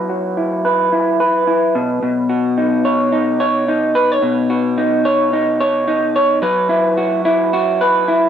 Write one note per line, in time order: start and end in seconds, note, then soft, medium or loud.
0.00 3.32 F#3 medium
0.00 0.84 B3 medium
0.00 0.36 E4 medium
0.00 0.64 B4 medium
0.09 2.29 F#4 medium
0.37 0.91 E4 soft
0.65 1.20 B4 medium
0.92 1.46 E4 soft
1.20 2.85 B4 medium
1.47 1.82 E4 medium
1.75 2.02 B2 medium
2.03 4.21 B2 medium
2.29 4.49 F#4 medium
2.58 3.11 D#4 medium
2.85 3.40 C#5 medium
3.12 3.67 D#4 medium
3.40 3.95 C#5 medium
3.68 4.77 D#4 medium
3.95 4.12 B4 medium
4.12 5.04 C#5 medium
4.22 6.43 B2 medium
4.50 6.72 F#4 medium
4.78 5.32 D#4 medium
5.05 5.60 C#5 medium
5.33 5.86 D#4 soft
5.60 6.15 C#5 medium
5.88 6.50 D#4 medium
6.16 6.42 C#5 medium
6.42 8.29 F#3 medium
6.42 7.81 B4 medium
6.69 7.24 E4 medium
6.98 7.53 F#4 medium
7.25 8.07 E4 medium
7.53 8.29 F#4 medium
7.81 8.29 B4 medium
8.08 8.29 E4 medium